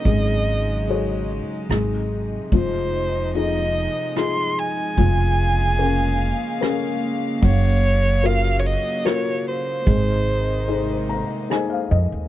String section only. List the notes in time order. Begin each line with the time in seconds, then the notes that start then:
Already playing: C#3 D#4
0.05 F#3 G#3
1.69 C3
2.53 F3 G#3 D#4
5.00 C#3 A#3 F5
7.44 F#3
9.87 C3 D#3 G#3 D#4